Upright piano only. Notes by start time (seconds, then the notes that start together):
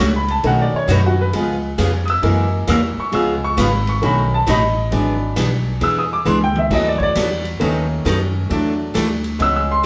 Already playing: C#6
0.16 B5
0.31 A5
0.44 D#3 A3 C#4 F#5
0.61 D5
0.76 C#5
0.91 B4
1.06 F#4
1.21 B4
1.34 F3 G#3 B3
2.06 D#6
2.10 E6
2.22 E3 G#3 A#3
2.70 E6
3.00 C#6
3.12 F3 G#3 B3 E6
3.44 C#6
3.60 B5
3.89 C#6
4.02 D#3 A3 C#4 B5
4.34 A5
4.49 D#5 B5
4.91 F#3 G#3 D4
5.84 E6
5.99 D#6
6.13 D6
6.28 C6
6.44 G5
6.58 E5
6.70 E3 F#3 B3 D#5
6.88 D5
6.98 C#5
7.03 D5
7.60 D#3 A3 C#4
8.50 F#3 A3 D4
9.39 G#3 B3 C#4 E6
9.56 E6
9.71 C6